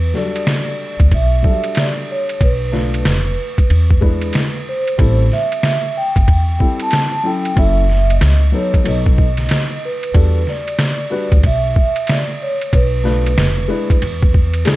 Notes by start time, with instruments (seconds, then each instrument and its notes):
Already playing: upright bass E2, vibraphone B4
0.14 grand piano F#3 D4 F#4 A4, snare
0.18 grand piano G3, vibraphone D5
0.36 ride
0.47 snare, hi-hat pedal, ride
1.00 upright bass D2, kick, ride
1.11 upright bass B1, vibraphone E5, kick, ride
1.42 grand piano F#3 D4 F#4 A4, kick
1.49 grand piano G3
1.64 ride
1.75 vibraphone D5, snare, hi-hat pedal, ride
2.11 vibraphone C#5
2.29 ride
2.41 upright bass B1, vibraphone B4, kick, ride
2.72 grand piano A3 D4 F4 B4, snare
2.94 ride
3.05 upright bass F1, snare, hi-hat pedal, ride
3.58 kick, ride
3.70 upright bass E2, ride
3.91 kick
4.01 grand piano G#3 D4 E4 B4, kick
4.22 ride
4.33 snare, hi-hat pedal, ride
4.69 vibraphone C5
4.88 ride
4.98 upright bass A1, grand piano G3 C4 E4 A4, kick, ride
5.32 vibraphone E5, snare
5.52 ride
5.63 snare, hi-hat pedal, ride
5.97 vibraphone G5
6.16 upright bass G1, kick, ride
6.28 upright bass E2, kick, ride
6.59 grand piano G3 C4 E4 A4, kick
6.80 vibraphone A5, ride
6.91 snare, hi-hat pedal, ride
7.23 grand piano F#3 C#4 E4 A4, vibraphone G5
7.45 ride
7.56 upright bass F#1, grand piano F#3 C#4 E4 A4, vibraphone E5, kick, ride
7.89 snare
8.10 vibraphone D#5, ride
8.21 upright bass C#2, snare, hi-hat pedal, ride
8.52 grand piano F#3 B3 D#4 A4, vibraphone C#5
8.74 kick, ride
8.84 upright bass B1, grand piano F#3 B3 D#4 A4, vibraphone D#5, ride
9.06 kick
9.18 kick
9.37 snare, ride
9.49 snare, hi-hat pedal, ride
9.85 vibraphone B4
10.03 ride
10.14 upright bass E2, grand piano G3 D4 F#4 A4, kick, ride
10.47 vibraphone D5, snare
10.68 ride
10.79 snare, hi-hat pedal, ride
11.10 grand piano G3 D4 F#4 B4
11.32 upright bass D2, kick, ride
11.43 upright bass B1, vibraphone E5, kick, ride
11.76 vibraphone E5, kick
11.96 ride
12.07 vibraphone D5, snare, hi-hat pedal, ride
12.42 vibraphone C#5
12.62 ride
12.73 upright bass B1, vibraphone B4, kick, ride
13.03 grand piano A3 D4 F4 B4, snare
13.26 ride
13.38 upright bass F1, snare, hi-hat pedal, ride
13.68 grand piano G#3 D4 E4 B4
13.90 kick, ride
14.02 upright bass E2, ride
14.23 kick
14.34 kick
14.54 ride
14.65 grand piano G#3 D4 E4 G#4, snare, hi-hat pedal, ride